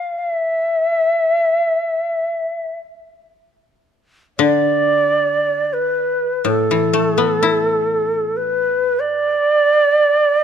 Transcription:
Already playing: F5
0.18 F5
0.30 E5
4.38 D3 D5
5.73 B4
6.45 A2 A4
6.71 E3
6.93 A3
7.18 B3
7.43 E4
8.36 B4
8.99 D5

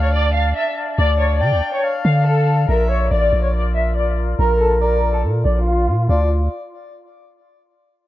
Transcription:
Already playing: D2 D4 D5 F5 A5
0.03 C#5
0.13 D5
0.34 F5
0.56 E5
0.98 D2 D5
1.20 C#5
1.41 D3 D5 G5
1.52 D2
1.73 C#5
1.84 F5
2.05 D3 F5
2.26 A4
2.69 A#1 F4 A#4 E5
2.90 C#5
3.11 A1 D5
3.33 A#1
3.44 C#5
3.54 D5
3.75 E5
3.96 D5
4.39 A#1 A#4
4.60 A4
4.81 A#4 D5
5.13 A4
5.24 A#2
5.45 A#1 D5
5.66 F4
5.88 A#2
6.09 D2 D4 F4 D5 F5 A5

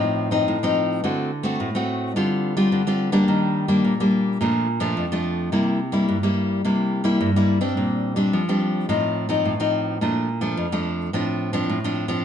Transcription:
Already playing: A2 F3 C4 D#4
0.31 F3 C4 D#4
0.48 A2
0.63 F3 C4 D#4
1.04 D3 A3 C4 F#4
1.43 A3 C4 F#4
1.60 A2
1.75 A3 C4 F#4
2.16 D3 G3 C4 F4
2.57 G3 C4 F4
2.72 D3
2.87 G3 C4 F4
3.12 G3 A#3 D4
3.28 D#3
3.68 G3 A#3 D4
3.84 A#2
4.00 G3 A#3 D4
4.41 A#2 F3 A3 D4
4.80 F3 A3 D4
4.97 F2
5.12 F3 A3 D4
5.52 C3 G3 A#3 E4
5.92 G3 A#3 E4
6.09 G2
6.23 G3 A#3 E4
6.65 C3 G3 A#3 E4
7.04 G3 A#3 E4
7.21 G2
7.36 G3 A#3 E4
7.61 G3 C4 D4
7.77 A#2
8.16 G3 C4 D4
8.33 F3
8.49 G3 C4 D4
8.89 A2 F3 C4 D#4
9.29 F3 C4 D#4
9.45 A2
9.60 F3 C4 D#4
10.01 A#2 F3 A3 D4
10.41 F3 A3 D4
10.57 F2
10.72 F3 A3 D4
11.13 A2 F3 C4 D4
11.53 F3 C4 D4
11.69 A2
11.84 F3 C4 D4
12.08 F3 C4 D4

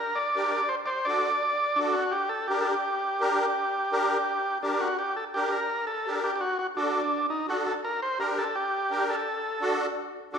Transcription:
Already playing: A#4
0.15 D5
0.35 D4 G4 A#4
0.52 D5
0.69 C5
0.86 C5 D5
1.05 D4 F#4 A4 D5
1.76 D4 F#4 A4
1.93 F#4
2.12 G4
2.29 A4
2.48 D4 G4 A#4
2.61 A4
2.65 G4
3.20 D4 G4 A#4
3.92 D4 G4 A#4
4.62 D4 G4 A#4
4.80 F#4
4.99 G4
5.16 A4
5.34 D4 G4 A#4
5.52 A#4
5.87 A4
6.06 D4 G4 A#4
6.24 G4
6.36 G4
6.41 F#4
6.59 F#4
6.76 D4 F#4 A4
7.30 D#4
7.48 D4 F#4 A4
7.67 A4
7.85 A#4
8.02 C5
8.19 D4 G4 A#4
8.38 A4
8.55 G4
8.90 D4 G4 A#4
9.10 A4
9.60 D4 F#4 A4
10.33 D4 F#4 A4

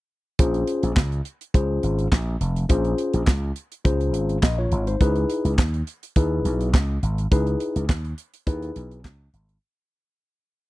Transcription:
0.39 A#1 C#4 F4 G#4 C5, kick, closed hi-hat
0.54 closed hi-hat
0.67 closed hi-hat
0.83 A#1, closed hi-hat
0.96 C#2, kick, snare, clap
1.12 closed hi-hat
1.25 closed hi-hat
1.41 closed hi-hat
1.54 C#2 C#4 F4 G#4 C5, kick, closed hi-hat
1.83 G#1, closed hi-hat
1.99 closed hi-hat
2.12 A#1, kick, snare, clap
2.40 F1, closed hi-hat
2.56 closed hi-hat
2.69 A#1 C#4 F4 G#4 C5, kick, closed hi-hat
2.85 closed hi-hat
2.98 closed hi-hat
3.13 A#1, closed hi-hat
3.27 C#2, kick, snare, clap
3.56 closed hi-hat
3.72 closed hi-hat
3.85 C#2 C#4 F4 G#4 C5, kick, closed hi-hat
4.01 closed hi-hat
4.14 G#1, closed hi-hat
4.29 closed hi-hat
4.43 A#1 D#5, kick, snare, clap
4.58 F4 C#5
4.71 G#1, closed hi-hat
4.87 D#4 C5, closed hi-hat
5.01 C#2 D#4 E4 G#4 B4, kick, closed hi-hat
5.16 closed hi-hat
5.30 closed hi-hat
5.45 C#2, closed hi-hat
5.58 D#2, kick, snare, clap
5.74 closed hi-hat
5.87 closed hi-hat
6.03 closed hi-hat
6.16 D#2 D#4 E4 G#4 B4, kick, closed hi-hat
6.45 B1, closed hi-hat
6.61 closed hi-hat
6.74 C#2, kick, snare, clap
7.03 G#1, closed hi-hat
7.18 closed hi-hat
7.31 C#2 D#4 E4 G#4 B4, kick, closed hi-hat
7.47 closed hi-hat
7.60 closed hi-hat
7.76 C#2, closed hi-hat
7.89 D#2, kick, snare, clap
8.05 closed hi-hat
8.18 closed hi-hat
8.34 closed hi-hat
8.47 D#2 D#4 E4 G#4 B4, kick, closed hi-hat
8.62 closed hi-hat
8.76 B1, closed hi-hat
8.91 closed hi-hat
9.04 C#2, kick, snare, clap
9.33 G#1, closed hi-hat
9.49 closed hi-hat

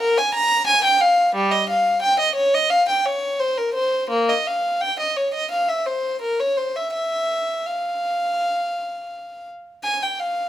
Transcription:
0.00 A#4
0.18 G#5
0.34 A#5
0.67 G#5
0.84 G5
1.01 F5
1.35 G3
1.51 D#5
1.70 F5
2.02 G5
2.20 D#5
2.35 C#5
2.54 D#5
2.70 F5
2.89 G5
3.06 C#5
3.40 C5
3.58 A#4
3.74 C5
4.10 A#3
4.29 D#5
4.47 F5
4.81 G5
5.00 D#5
5.16 C#5
5.34 D#5
5.51 F5
5.69 E5
5.86 C5
6.22 A#4
6.40 C#5
6.57 C5
6.76 E5
6.93 E5
7.67 F5
9.84 G#5
10.03 G5
10.20 F5

